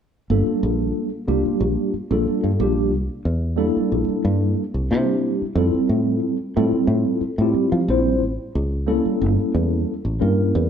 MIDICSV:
0, 0, Header, 1, 4, 480
1, 0, Start_track
1, 0, Key_signature, -2, "minor"
1, 0, Tempo, 661521
1, 210, Time_signature, 4, 2, 24, 8
1, 7762, End_track
2, 0, Start_track
2, 0, Title_t, "Tine electric piano"
2, 0, Program_c, 0, 4
2, 219, Note_on_c, 0, 55, 69
2, 220, Note_on_c, 0, 58, 69
2, 225, Note_on_c, 0, 65, 61
2, 226, Note_on_c, 0, 62, 66
2, 226, Note_on_c, 0, 69, 81
2, 784, Note_off_c, 0, 55, 0
2, 784, Note_off_c, 0, 58, 0
2, 787, Note_off_c, 0, 62, 0
2, 787, Note_off_c, 0, 65, 0
2, 787, Note_off_c, 0, 69, 0
2, 924, Note_on_c, 0, 55, 80
2, 926, Note_on_c, 0, 65, 69
2, 928, Note_on_c, 0, 58, 72
2, 930, Note_on_c, 0, 67, 78
2, 932, Note_on_c, 0, 62, 66
2, 1400, Note_off_c, 0, 55, 0
2, 1401, Note_off_c, 0, 65, 0
2, 1402, Note_off_c, 0, 58, 0
2, 1403, Note_off_c, 0, 67, 0
2, 1404, Note_off_c, 0, 62, 0
2, 1529, Note_on_c, 0, 55, 68
2, 1531, Note_on_c, 0, 58, 63
2, 1536, Note_on_c, 0, 62, 63
2, 1536, Note_on_c, 0, 65, 67
2, 1539, Note_on_c, 0, 69, 80
2, 1813, Note_off_c, 0, 55, 0
2, 1814, Note_off_c, 0, 58, 0
2, 1817, Note_off_c, 0, 62, 0
2, 1817, Note_off_c, 0, 65, 0
2, 1818, Note_off_c, 0, 69, 0
2, 1883, Note_on_c, 0, 55, 75
2, 1884, Note_on_c, 0, 58, 66
2, 1888, Note_on_c, 0, 65, 63
2, 1889, Note_on_c, 0, 62, 67
2, 1893, Note_on_c, 0, 67, 85
2, 2126, Note_off_c, 0, 55, 0
2, 2127, Note_off_c, 0, 58, 0
2, 2128, Note_off_c, 0, 65, 0
2, 2129, Note_off_c, 0, 62, 0
2, 2131, Note_off_c, 0, 67, 0
2, 2586, Note_on_c, 0, 55, 85
2, 2591, Note_on_c, 0, 58, 76
2, 2595, Note_on_c, 0, 69, 94
2, 2597, Note_on_c, 0, 62, 71
2, 2599, Note_on_c, 0, 64, 71
2, 3356, Note_off_c, 0, 55, 0
2, 3358, Note_off_c, 0, 58, 0
2, 3360, Note_off_c, 0, 69, 0
2, 3361, Note_off_c, 0, 62, 0
2, 3362, Note_off_c, 0, 64, 0
2, 3568, Note_on_c, 0, 55, 68
2, 3568, Note_on_c, 0, 58, 57
2, 3569, Note_on_c, 0, 62, 62
2, 3572, Note_on_c, 0, 64, 60
2, 3576, Note_on_c, 0, 67, 73
2, 3949, Note_off_c, 0, 55, 0
2, 3949, Note_off_c, 0, 58, 0
2, 3949, Note_off_c, 0, 62, 0
2, 3951, Note_off_c, 0, 64, 0
2, 3953, Note_off_c, 0, 67, 0
2, 4038, Note_on_c, 0, 55, 73
2, 4038, Note_on_c, 0, 60, 72
2, 4044, Note_on_c, 0, 64, 68
2, 4045, Note_on_c, 0, 69, 82
2, 4047, Note_on_c, 0, 65, 67
2, 4613, Note_off_c, 0, 55, 0
2, 4613, Note_off_c, 0, 60, 0
2, 4616, Note_off_c, 0, 64, 0
2, 4617, Note_off_c, 0, 69, 0
2, 4618, Note_off_c, 0, 65, 0
2, 4761, Note_on_c, 0, 64, 71
2, 4762, Note_on_c, 0, 55, 78
2, 4762, Note_on_c, 0, 65, 76
2, 4764, Note_on_c, 0, 60, 70
2, 4769, Note_on_c, 0, 69, 83
2, 5239, Note_off_c, 0, 55, 0
2, 5239, Note_off_c, 0, 64, 0
2, 5239, Note_off_c, 0, 65, 0
2, 5241, Note_off_c, 0, 60, 0
2, 5243, Note_off_c, 0, 69, 0
2, 5373, Note_on_c, 0, 55, 75
2, 5374, Note_on_c, 0, 60, 69
2, 5378, Note_on_c, 0, 64, 71
2, 5381, Note_on_c, 0, 65, 63
2, 5382, Note_on_c, 0, 67, 77
2, 5656, Note_off_c, 0, 55, 0
2, 5656, Note_off_c, 0, 60, 0
2, 5658, Note_off_c, 0, 64, 0
2, 5660, Note_off_c, 0, 65, 0
2, 5660, Note_off_c, 0, 67, 0
2, 5722, Note_on_c, 0, 55, 79
2, 5727, Note_on_c, 0, 60, 70
2, 5731, Note_on_c, 0, 64, 70
2, 5733, Note_on_c, 0, 65, 68
2, 5734, Note_on_c, 0, 72, 83
2, 5966, Note_off_c, 0, 55, 0
2, 5968, Note_off_c, 0, 60, 0
2, 5970, Note_off_c, 0, 64, 0
2, 5972, Note_off_c, 0, 65, 0
2, 5972, Note_off_c, 0, 72, 0
2, 6432, Note_on_c, 0, 58, 75
2, 6435, Note_on_c, 0, 55, 79
2, 6438, Note_on_c, 0, 61, 73
2, 6442, Note_on_c, 0, 64, 73
2, 6442, Note_on_c, 0, 69, 88
2, 7201, Note_off_c, 0, 58, 0
2, 7202, Note_off_c, 0, 55, 0
2, 7203, Note_off_c, 0, 61, 0
2, 7205, Note_off_c, 0, 64, 0
2, 7206, Note_off_c, 0, 69, 0
2, 7398, Note_on_c, 0, 61, 59
2, 7399, Note_on_c, 0, 58, 60
2, 7400, Note_on_c, 0, 55, 61
2, 7404, Note_on_c, 0, 64, 60
2, 7408, Note_on_c, 0, 70, 75
2, 7762, Note_off_c, 0, 55, 0
2, 7762, Note_off_c, 0, 58, 0
2, 7762, Note_off_c, 0, 61, 0
2, 7762, Note_off_c, 0, 64, 0
2, 7762, Note_off_c, 0, 70, 0
2, 7762, End_track
3, 0, Start_track
3, 0, Title_t, "Fingered electric bass"
3, 0, Program_c, 1, 33
3, 217, Note_on_c, 1, 31, 82
3, 320, Note_off_c, 1, 31, 0
3, 457, Note_on_c, 1, 34, 70
3, 662, Note_off_c, 1, 34, 0
3, 929, Note_on_c, 1, 36, 70
3, 1035, Note_off_c, 1, 36, 0
3, 1165, Note_on_c, 1, 34, 78
3, 1272, Note_off_c, 1, 34, 0
3, 1528, Note_on_c, 1, 34, 68
3, 1632, Note_off_c, 1, 34, 0
3, 1768, Note_on_c, 1, 43, 64
3, 1871, Note_off_c, 1, 43, 0
3, 1885, Note_on_c, 1, 34, 83
3, 2128, Note_off_c, 1, 34, 0
3, 2128, Note_on_c, 1, 36, 84
3, 2234, Note_off_c, 1, 36, 0
3, 2360, Note_on_c, 1, 40, 76
3, 2678, Note_off_c, 1, 40, 0
3, 2844, Note_on_c, 1, 34, 70
3, 2952, Note_off_c, 1, 34, 0
3, 3081, Note_on_c, 1, 43, 83
3, 3292, Note_off_c, 1, 43, 0
3, 3441, Note_on_c, 1, 36, 65
3, 3561, Note_on_c, 1, 48, 82
3, 3572, Note_off_c, 1, 36, 0
3, 3878, Note_off_c, 1, 48, 0
3, 4030, Note_on_c, 1, 41, 88
3, 4144, Note_off_c, 1, 41, 0
3, 4276, Note_on_c, 1, 45, 77
3, 4490, Note_off_c, 1, 45, 0
3, 4765, Note_on_c, 1, 45, 77
3, 4872, Note_off_c, 1, 45, 0
3, 4987, Note_on_c, 1, 45, 83
3, 5103, Note_off_c, 1, 45, 0
3, 5356, Note_on_c, 1, 45, 71
3, 5465, Note_off_c, 1, 45, 0
3, 5602, Note_on_c, 1, 53, 75
3, 5708, Note_off_c, 1, 53, 0
3, 5720, Note_on_c, 1, 34, 83
3, 5964, Note_off_c, 1, 34, 0
3, 5964, Note_on_c, 1, 33, 84
3, 6072, Note_off_c, 1, 33, 0
3, 6206, Note_on_c, 1, 37, 79
3, 6522, Note_off_c, 1, 37, 0
3, 6686, Note_on_c, 1, 31, 70
3, 6794, Note_off_c, 1, 31, 0
3, 6926, Note_on_c, 1, 40, 79
3, 7136, Note_off_c, 1, 40, 0
3, 7290, Note_on_c, 1, 33, 66
3, 7410, Note_off_c, 1, 33, 0
3, 7413, Note_on_c, 1, 43, 74
3, 7629, Note_off_c, 1, 43, 0
3, 7656, Note_on_c, 1, 40, 79
3, 7762, Note_off_c, 1, 40, 0
3, 7762, End_track
4, 0, Start_track
4, 0, Title_t, "Muted fingered electric bass strokes"
4, 338, Note_on_c, 9, 29, 31
4, 411, Note_off_c, 9, 29, 0
4, 1058, Note_on_c, 9, 29, 31
4, 1130, Note_off_c, 9, 29, 0
4, 1404, Note_on_c, 9, 29, 30
4, 1477, Note_off_c, 9, 29, 0
4, 1649, Note_on_c, 9, 29, 31
4, 1722, Note_off_c, 9, 29, 0
4, 2732, Note_on_c, 9, 29, 30
4, 2804, Note_off_c, 9, 29, 0
4, 2965, Note_on_c, 9, 29, 32
4, 3037, Note_off_c, 9, 29, 0
4, 3931, Note_on_c, 9, 29, 31
4, 4004, Note_off_c, 9, 29, 0
4, 4166, Note_on_c, 9, 29, 30
4, 4239, Note_off_c, 9, 29, 0
4, 4880, Note_on_c, 9, 29, 29
4, 4952, Note_off_c, 9, 29, 0
4, 5232, Note_on_c, 9, 29, 34
4, 5304, Note_off_c, 9, 29, 0
4, 5469, Note_on_c, 9, 29, 32
4, 5542, Note_off_c, 9, 29, 0
4, 6570, Note_on_c, 9, 29, 32
4, 6642, Note_off_c, 9, 29, 0
4, 6815, Note_on_c, 9, 29, 29
4, 6887, Note_off_c, 9, 29, 0
4, 7762, End_track
0, 0, End_of_file